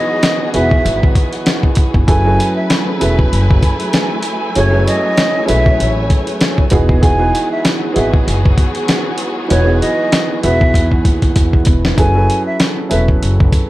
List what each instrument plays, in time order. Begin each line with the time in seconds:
Already playing: upright piano E3 B3 D#4 F#4 G#4 B4, string section F#3 B3 F#4 G#4, flute D#5
0.23 snare, closed hi-hat
0.53 upright bass E1, upright piano D#3 E3 B3 F#4 B4, flute E5, closed hi-hat
0.71 kick
0.85 upright bass G#1, closed hi-hat
1.03 kick
1.15 kick, closed hi-hat
1.33 closed hi-hat
1.46 snare, closed hi-hat
1.63 kick
1.75 kick, closed hi-hat
1.94 upright bass G1, kick
2.07 upright bass F#1, upright piano F#3 C#4 E4 G#4 A4 B4, string section F#3 A3 E4 B4 G#5, flute G#5, kick, closed hi-hat
2.25 upright piano F#3 C#4 E4 G#4 A4 B4
2.40 closed hi-hat
2.56 flute E5
2.70 snare, closed hi-hat
2.99 upright bass E1, upright piano F#3 C#4 E4 G#4 A4 B4, flute E5, closed hi-hat
3.19 kick
3.33 upright bass F#1, closed hi-hat
3.51 kick
3.63 kick, closed hi-hat
3.80 closed hi-hat
3.93 snare, closed hi-hat
4.23 closed hi-hat
4.55 upright bass F#1, upright piano F#3 C#4 E4 G#4 A4 C#5, string section C#5, flute C#5, closed hi-hat
4.71 upright piano F#3 C#4 E4 G#4 A4 B4
4.80 upright piano C#5
4.87 flute D#5, closed hi-hat
5.17 snare, closed hi-hat
5.45 upright bass B1, upright piano F#3 C#4 E4 G#4 A4 B4, flute E5, closed hi-hat
5.66 kick
5.80 upright bass A1, closed hi-hat
6.10 kick, closed hi-hat
6.27 closed hi-hat
6.41 snare, closed hi-hat
6.58 kick
6.70 upright bass E1, upright piano E3 B3 D#4 F#4 G#4, string section F#3 B3 F#4 G#4, kick, closed hi-hat
6.89 kick
7.00 upright piano E3 B3 D#4 F#4 G#4, flute G#5, kick, closed hi-hat
7.17 upright piano E3 B3 D#4 F#4 B4
7.35 closed hi-hat
7.52 flute E5
7.65 snare, closed hi-hat
7.94 upright bass G#1, upright piano E3 B3 D#4 F#4 G#4, flute E5, closed hi-hat
8.14 kick
8.27 upright bass F#1, closed hi-hat
8.45 kick
8.58 kick, closed hi-hat
8.75 closed hi-hat
8.88 snare, closed hi-hat
9.18 closed hi-hat
9.48 upright bass E1, upright piano E3 B3 D#4 F#4 B4, flute C#5, closed hi-hat
9.64 upright piano E3 B3 D#4 F#4 G#4
9.81 flute D#5, closed hi-hat
10.12 snare, closed hi-hat
10.43 upright bass E1, upright piano B3 E4 F#4 B4, flute E5, closed hi-hat
10.61 kick
10.74 upright bass E2, kick, closed hi-hat
10.91 kick
11.05 upright bass D#2, kick, closed hi-hat
11.22 kick, closed hi-hat
11.36 upright bass E2, kick, closed hi-hat
11.53 kick
11.65 upright bass E1, kick, closed hi-hat
11.85 snare
11.97 upright bass F#1, upright piano F#3 C#4 E4 G#4 A4 B4, flute G#5, kick, closed hi-hat
12.15 upright piano F#3 C#4 E4 G#4 A4 B4
12.30 closed hi-hat
12.46 flute E5
12.60 snare, closed hi-hat
12.89 upright bass E1, upright piano F#3 C#4 E4 G#4 A4 B4, flute E5, closed hi-hat
13.08 kick
13.22 upright bass F#1, closed hi-hat
13.40 kick
13.52 kick, closed hi-hat